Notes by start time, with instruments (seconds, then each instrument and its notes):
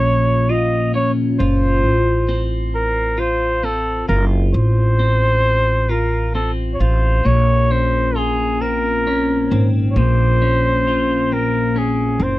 Already playing: upright bass A#1, clean electric guitar A#2 C#4 F4, flugelhorn C#5
0.49 clean electric guitar F4, flugelhorn D#5
0.94 clean electric guitar C#4, flugelhorn C#5
1.39 upright bass F#1, clean electric guitar F4, flugelhorn C5
1.85 upright bass A1
2.29 clean electric guitar C4
2.75 flugelhorn A#4
3.18 clean electric guitar F4, flugelhorn C5
3.63 clean electric guitar C4, flugelhorn A4
4.08 upright bass F#1, clean electric guitar F4, flugelhorn A#4
4.54 upright bass A1, flugelhorn C5
4.99 clean electric guitar C4
5.89 clean electric guitar F4, flugelhorn A#4
6.35 clean electric guitar C4, flugelhorn A4
6.74 flugelhorn C#5
6.80 upright bass A1, clean electric guitar F4, flugelhorn C5
7.25 upright bass A#1, clean electric guitar A#2, flugelhorn C#5
7.71 clean electric guitar C#4, flugelhorn C5
8.16 clean electric guitar F4, flugelhorn G#4
8.61 clean electric guitar C4, flugelhorn A#4
9.07 clean electric guitar C#4
9.51 upright bass G#1, clean electric guitar C4
9.90 flugelhorn C#5
9.96 upright bass A#1, clean electric guitar A#2, flugelhorn C5
10.42 clean electric guitar C#4
10.87 clean electric guitar F4
11.32 clean electric guitar C4, flugelhorn A#4
11.76 clean electric guitar C#4, flugelhorn G#4
12.20 upright bass F#1, clean electric guitar C4, flugelhorn C5